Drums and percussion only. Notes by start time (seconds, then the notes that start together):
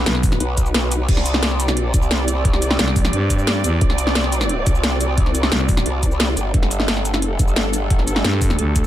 0.06 snare, closed hi-hat, cabasa
0.15 snare
0.23 kick, open hi-hat, cabasa
0.32 snare, cabasa
0.40 closed hi-hat
0.57 kick, closed hi-hat, cabasa
0.66 cabasa
0.74 snare, closed hi-hat
0.92 closed hi-hat, cabasa
1.09 kick, closed hi-hat, crash
1.17 snare
1.26 closed hi-hat, cabasa
1.34 snare
1.43 snare, closed hi-hat
1.51 snare
1.60 closed hi-hat, cabasa
1.68 snare, cabasa
1.77 closed hi-hat
1.94 kick, closed hi-hat, cabasa
2.02 cabasa
2.11 snare, closed hi-hat
2.28 closed hi-hat, cabasa
2.45 kick, closed hi-hat
2.53 snare
2.62 closed hi-hat, cabasa
2.71 snare
2.79 snare, closed hi-hat
2.88 snare
2.96 kick, open hi-hat, cabasa
3.05 snare, cabasa
3.13 closed hi-hat
3.30 kick, closed hi-hat, cabasa
3.39 cabasa
3.47 snare, closed hi-hat
3.64 closed hi-hat, cabasa
3.81 kick, closed hi-hat
3.90 snare
3.98 closed hi-hat, cabasa
4.07 snare
4.15 snare, closed hi-hat
4.24 snare
4.32 closed hi-hat, cabasa
4.41 snare, cabasa
4.49 closed hi-hat
4.66 kick, closed hi-hat, cabasa
4.75 cabasa
4.84 snare, closed hi-hat
5.01 closed hi-hat, cabasa
5.18 kick, closed hi-hat
5.26 snare
5.35 closed hi-hat, cabasa
5.43 snare
5.52 snare, closed hi-hat
5.60 snare
5.69 kick, open hi-hat, cabasa
5.77 snare, cabasa
5.86 closed hi-hat
6.03 kick, closed hi-hat, cabasa
6.11 cabasa
6.20 snare, closed hi-hat
6.37 closed hi-hat, cabasa
6.54 kick, closed hi-hat
6.63 snare
6.71 closed hi-hat, cabasa
6.80 snare
6.88 snare, closed hi-hat
6.97 snare
7.05 closed hi-hat, cabasa
7.14 snare, cabasa
7.22 closed hi-hat
7.39 kick, closed hi-hat, cabasa
7.48 cabasa
7.56 snare, closed hi-hat
7.73 closed hi-hat, cabasa
7.90 kick, closed hi-hat
7.99 snare
8.07 closed hi-hat, cabasa
8.16 snare
8.24 snare, closed hi-hat
8.33 snare
8.42 kick, open hi-hat, cabasa
8.50 snare, cabasa
8.59 closed hi-hat
8.76 kick, closed hi-hat, cabasa